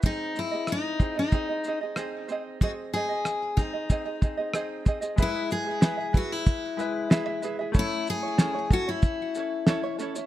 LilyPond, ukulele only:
\new Staff \with { instrumentName = "Ukulele" } { \time 4/4 \key e \major \tempo 4 = 93 <bis gis' bis' dis''>8 <bis gis' bis' dis''>16 <bis gis' dis''>8. <bis gis' bis' dis''>16 <bis gis' dis''>16 <bis gis' bis' dis''>16 <bis gis' dis''>16 <bis gis' bis' dis''>16 <bis gis' dis''>16 <bis gis' bis' dis''>8 <bis gis' bis' dis''>8 | <bis gis' bis' dis''>8 <bis gis' bis' dis''>16 <bis gis' dis''>8. <bis gis' bis' dis''>16 <bis gis' dis''>16 <bis gis' bis' dis''>16 <bis gis' dis''>16 <bis gis' bis' dis''>16 <bis gis' dis''>16 <bis gis' bis' dis''>8 <bis gis' bis' dis''>16 <bis gis' dis''>16 | <e' gis' b' e''>8. <e' gis' e''>16 <e' gis' b' e''>16 <e' gis' e''>16 <e' gis' b' e''>4 <e' gis' b' e''>8 <e' gis' b' e''>16 <e' gis' e''>16 <e' gis' b' e''>16 <e' gis' e''>16 | <cis' e' a' cis''>8. <cis' e' cis''>16 <cis' e' a' cis''>16 <cis' e' cis''>16 <cis' e' a' cis''>16 <cis' e' cis''>8. <cis' e' a' cis''>8 <cis' e' a' cis''>16 <cis' e' cis''>16 <cis' e' a' cis''>16 <cis' e' cis''>16 | }